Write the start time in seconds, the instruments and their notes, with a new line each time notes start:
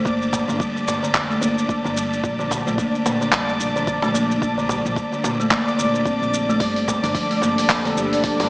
Already playing: synth texture D4 D5
0.05 upright bass G1, kalimba A#3, kick, shaker
0.22 shaker
0.33 cajon bass, shaker
0.48 upright bass G1, kalimba D3, shaker
0.60 kalimba G3, kick, shaker
0.76 cajon slap, shaker
0.87 upright bass G2, cajon slap, shaker
1.03 kalimba D3, shaker
1.14 upright bass F1, kalimba D3, kick, clap, shaker
1.30 kalimba A3, shaker
1.41 upright bass G1, kalimba A#3, shaker
1.58 shaker
1.69 kick, shaker
1.84 upright bass G1, kalimba D3, shaker
1.96 kalimba G3, shaker
2.13 shaker
2.24 upright bass A#1, kick, shaker
2.39 kalimba D3, shaker
2.51 kalimba D3, cajon bass, shaker
2.67 upright bass A#1, kalimba A3, shaker
2.78 kalimba A#3, kick, shaker
2.95 shaker
3.06 upright bass A#2, cajon slap, shaker
3.21 kalimba D3, shaker
3.32 upright bass F1, kalimba G3, kick, clap, shaker
3.49 shaker
3.60 upright bass A#1, shaker
3.76 kalimba D3, shaker
3.87 kalimba D3, kick, shaker
4.02 upright bass A#1, kalimba A3, cajon slap, shaker
4.15 kalimba A#3, shaker
4.31 shaker
4.42 upright bass A#1, kick, shaker
4.58 kalimba D3, shaker
4.69 kalimba G3, cajon bass, shaker
4.86 upright bass A#1, shaker
4.96 kick, shaker
5.12 kalimba D3, cajon slap, shaker
5.24 upright bass A#2, kalimba D3, cajon slap, shaker
5.40 kalimba A3, shaker
5.51 upright bass F1, kalimba A#3, kick, clap, shaker
5.68 shaker
5.78 upright bass A#2, kalimba D3, shaker
5.94 kalimba D3, shaker
6.06 kalimba C4, kick, shaker
6.22 upright bass A#1, shaker
6.34 shaker
6.49 kalimba A3, shaker
6.60 upright bass G1, synth drone G3, kalimba G3, kick, open hi-hat, shaker
6.76 synth drone D4, open hi-hat, shaker
6.87 synth drone A4, cajon bass, shaker
7.04 upright bass G1, kalimba D3, open hi-hat, shaker
7.15 kalimba F3, kick, open hi-hat, shaker
7.31 kalimba A3, open hi-hat, shaker
7.42 upright bass G2, kalimba A#3, cajon slap, shaker
7.58 open hi-hat, shaker
7.69 upright bass F1, kick, clap, open hi-hat, shaker
7.85 kalimba D3, open hi-hat, shaker
7.97 upright bass G1, kalimba G3, shaker
8.13 open hi-hat, shaker
8.24 kick, open hi-hat, shaker
8.40 upright bass G1, kalimba D3, cajon slap, open hi-hat, shaker